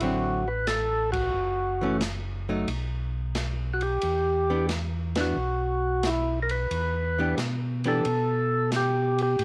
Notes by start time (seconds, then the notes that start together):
0.00 A1 D3 F#3 C4 E4 F#4, ride
0.48 B4
0.67 A4, snare, hi-hat pedal, ride
1.12 F#4, kick, ride
1.34 F#1
1.81 E3 A3 C#4
2.01 snare, hi-hat pedal, ride
2.49 F#3 A3 D#4
2.68 B1, ride
3.35 snare, hi-hat pedal, ride
3.74 F#4
3.81 G4, ride
4.02 E2, ride
4.50 E3 B3 D4 G4
4.69 snare, hi-hat pedal, ride
5.16 E3 B3 D4, snare, ride
5.21 F#4
5.37 B1
6.03 E4, snare, hi-hat pedal, ride
6.43 A#4
6.49 B4, ride
6.71 E2, ride
7.19 E3 B3 D4 G4
7.37 B2, snare, hi-hat pedal, ride
7.84 E3 B3 D4 G4 A4, ride
8.05 B2, ride
8.72 snare, hi-hat pedal, ride
8.76 G4
9.18 ride
9.23 G4
9.39 A2, ride